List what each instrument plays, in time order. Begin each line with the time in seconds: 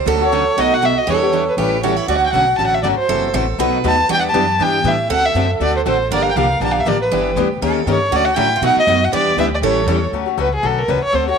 0.06 upright bass D2, steel-string acoustic guitar D3 F#3 A3 C#4 F#4 A4
0.21 steel-string acoustic guitar A3 C#4 F#4, violin C#5
0.32 steel-string acoustic guitar D3 F#3 A3 C#4 F#4 A4
0.57 upright bass B1, steel-string acoustic guitar B2 F#3 A3 D#4 F#4 B4, violin D#5
0.74 violin F#5
0.82 steel-string acoustic guitar B2 F#3 A3 D#4 F#4 B4, violin E5
0.98 violin D#5
1.07 upright bass E2, steel-string acoustic guitar E3 G3 B3 D4 E4 G4 A4 B4, violin C#5
1.22 steel-string acoustic guitar B3 D4 G4
1.33 steel-string acoustic guitar E3 G3 B3 D4 E4 G4 B4
1.49 violin B4
1.57 upright bass A1, steel-string acoustic guitar E3 G3 C#4 E4 G4 A4, violin B4
1.83 steel-string acoustic guitar E3 G3 C#4 E4 F#4 A4, violin C#5
1.96 steel-string acoustic guitar E4
2.08 upright bass D2, steel-string acoustic guitar D3 F#3 A3 C#4 F#4 A4, violin D5
2.17 violin F#5
2.26 violin G5
2.33 upright bass B1, steel-string acoustic guitar D3 F#3 A3 C#4 F#4 A4, violin F#5
2.58 upright bass A1, steel-string acoustic guitar D3 F#3 A3 C#4 F#4 A4, violin A5
2.67 violin F#5
2.74 violin E5
2.83 upright bass G1, steel-string acoustic guitar D3 F#3 A3 C#4 F#4 A4, violin D5
2.97 violin C5, muted upright bass stroke
3.09 upright bass F#1, steel-string acoustic guitar C3 E3 F#3 A3 C4 E4 F#4 A4
3.33 upright bass A1, steel-string acoustic guitar C3 E3 F#3 A3 C4 E4 F#4 A4
3.58 upright bass B1, steel-string acoustic guitar B2 F#3 A3 D#4 F#4 B4
3.84 upright bass D#2, steel-string acoustic guitar B2 F#3 A3 D#4 F#4 B4, violin A5
4.09 upright bass E2, steel-string acoustic guitar E3 G3 B3 D4 E4 G4 B4, violin G5
4.20 violin F#5
4.29 violin A5
4.34 upright bass F#2, steel-string acoustic guitar E3 G3 B3 D4 E4 G4 B4
4.59 upright bass G2, steel-string acoustic guitar E3 G3 B3 D4 E4 G4 B4, violin G5
4.84 upright bass A2, steel-string acoustic guitar E3 G3 B3 D4 E4 G4 B4
4.88 violin E5
5.09 upright bass D2, steel-string acoustic guitar D3 A3 C4 F#4 A4, violin F#5
5.26 violin E5
5.34 upright bass F#2, steel-string acoustic guitar D3 A3 C4 F#4 A4
5.60 upright bass D2, steel-string acoustic guitar D3 A3 C4 F#4 A4, violin D5
5.77 violin C5
5.85 upright bass A1, steel-string acoustic guitar D3 A3 C4 F#4 A4, violin C5
6.11 upright bass G1, steel-string acoustic guitar D3 F3 A#3 D4 G4 A#4, violin D5
6.23 violin F5
6.31 violin G5
6.36 upright bass C2, steel-string acoustic guitar D3 F3 A#3 D4 G4, violin F5
6.60 upright bass A#1, steel-string acoustic guitar D3 F3 A#3 D4 G4, violin A5
6.72 violin F5
6.80 violin E5
6.85 upright bass A1, steel-string acoustic guitar D3 F3 A#3 D4 G4, violin D5
7.02 violin B4
7.11 upright bass G1, steel-string acoustic guitar E3 G3 B3 D4 E4 G4 B4
7.36 upright bass D2, steel-string acoustic guitar E3 G3 B3 D4 E4 G4 B4
7.62 upright bass D#2, steel-string acoustic guitar D#3 A#3 C#4 G4 A4 A#4
7.86 upright bass G2, steel-string acoustic guitar D#3 A#3 C#4 G4 A#4
7.91 violin C#5
8.11 upright bass D2, steel-string acoustic guitar D3 F#3 A3 C#4 F#4 A4
8.16 violin D5
8.25 violin F#5
8.34 upright bass A2, steel-string acoustic guitar D3 F#3 A3 C#4 E4 F#4 A4, violin G5
8.56 steel-string acoustic guitar F4
8.61 upright bass B2, steel-string acoustic guitar B2 F#3 A3 D#4 F#4 B4
8.66 violin F#5
8.76 violin D#5, muted upright bass stroke
8.87 upright bass F#2, steel-string acoustic guitar B2 F#3 A3 D#4 F#4 B4
9.04 violin F#5
9.12 upright bass E2, steel-string acoustic guitar E3 G3 B3 D4 E4 G4 B4, violin D5
9.37 upright bass D2, steel-string acoustic guitar E3 G3 B3 D4 E4 G4 B4, violin E5
9.54 violin D5
9.62 upright bass A1, steel-string acoustic guitar E3 G3 C#4 E4 A4, violin C#5
9.87 upright bass E2, steel-string acoustic guitar E3 G3 C#4 E4 A4
10.12 upright bass D2, steel-string acoustic guitar D3 F#3 A3 C#4 F#4
10.26 steel-string acoustic guitar A3 C#4 F#4
10.37 upright bass C#2, steel-string acoustic guitar D3 F#3 A3 C#4 F#4, violin B4
10.55 violin G#4
10.63 upright bass B1, steel-string acoustic guitar D3 F#3 A3 C#4 F#4, violin A4
10.79 violin A#4
10.88 upright bass C#2, steel-string acoustic guitar D3 F#3 A3 C#4 F#4, violin B4
11.02 violin C#5, muted upright bass stroke
11.12 upright bass D2, steel-string acoustic guitar D3 A3 C4 F#4 A4, violin C5
11.28 steel-string acoustic guitar C4 F#4 A4, violin C#5